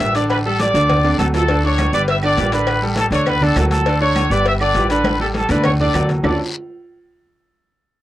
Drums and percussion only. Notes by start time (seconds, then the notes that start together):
0.00 cowbell, high conga, low timbale, short guiro
0.15 cowbell, short guiro
0.30 cowbell, high conga, low agogo, long guiro
0.45 high conga
0.59 cowbell, high conga, low timbale, low agogo, short guiro
0.75 cowbell, high conga, low agogo, short guiro
0.89 cowbell, high conga, low conga, low agogo, long guiro
1.05 high timbale
1.19 cowbell, high conga, high timbale, low agogo, short guiro
1.34 cowbell, low timbale, short guiro
1.48 cowbell, high conga, low agogo, long guiro
1.64 high conga
1.78 cowbell, high conga, low timbale, low agogo, short guiro, claves
1.93 short guiro
2.08 cowbell, high conga, low agogo, long guiro
2.23 high conga, low agogo, claves
2.37 cowbell, high conga, low timbale, short guiro
2.52 cowbell, short guiro
2.67 cowbell, high conga, low agogo, long guiro, claves
2.82 high conga
2.96 cowbell, high conga, low timbale, low agogo, short guiro
3.11 cowbell, high conga, low agogo, short guiro
3.26 cowbell, high conga, low conga, low agogo, long guiro, claves
3.41 high conga, low conga
3.56 cowbell, high conga, low timbale, low agogo, short guiro, claves
3.71 cowbell, high conga, short guiro
3.86 cowbell, high conga, low agogo, long guiro
4.01 high conga
4.16 cowbell, high conga, low timbale, low agogo, short guiro, claves
4.31 short guiro
4.46 cowbell, high conga, low agogo, long guiro
4.60 high conga, low agogo, claves
4.75 cowbell, high conga, low timbale, short guiro
4.90 cowbell, short guiro
5.04 cowbell, high conga, low agogo, long guiro, claves
5.20 high conga
5.34 cowbell, high conga, low timbale, low agogo, short guiro
5.49 cowbell, low conga, low agogo, short guiro
5.64 cowbell, low conga, low agogo, long guiro, claves
5.80 low conga
5.94 cowbell, low conga, low timbale, low agogo, short guiro, claves
6.09 cowbell, low conga, short guiro
6.24 low bongo, low conga, low timbale, long guiro, claves